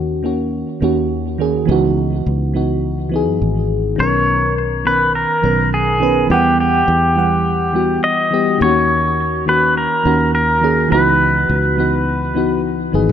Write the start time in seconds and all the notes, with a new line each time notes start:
Already playing: D#2 D#3 A#3 C#4 F#4
0.23 D#3 A#3 C#4 F#4
0.81 D#2 D#3 A#3 C#4 F#4
1.38 D#3 A#3 C#4 G#4
1.65 C#2 E3 B3 D#4
1.71 F#4
2.26 C#2
2.54 E3 B3 D#4 F#4
3.09 E3 B3
3.14 D#4 G#4
3.28 F#2
3.42 G#1
3.96 B1 D#3 B3
4.00 C#4 A#4 C#5
4.85 D#3 B3 C#4 A#4 B4
5.15 A#4
5.42 B1 D#3 B3 C#4 A#4
5.74 G#4
6.00 D#3 B3 C#4 B4
6.27 E2 E3 G3
6.31 B3 G4 F#5
6.60 G4
6.88 E2
7.15 E3 G3 B3 F#5
7.73 E3 G3 B3 F#4
8.04 D#5
8.31 E3 G3 B3 G4
8.58 D#2 D#3 A#3
8.62 C#4 F#4 C#5
9.46 D#3 A#3 C#4 F#4 B4
9.77 A#4
10.04 D#2 D#3 A#3 C#4 F#4
10.35 A#4
10.61 D#3 A#3 C#4 G#4
10.88 C#2 E3 B3 B4
10.93 D#4 F#4
11.49 C#2
11.77 E3 B3 D#4 F#4
12.34 E3 B3 D#4 F#4
12.92 G#1 E3 B3 D#4 G#4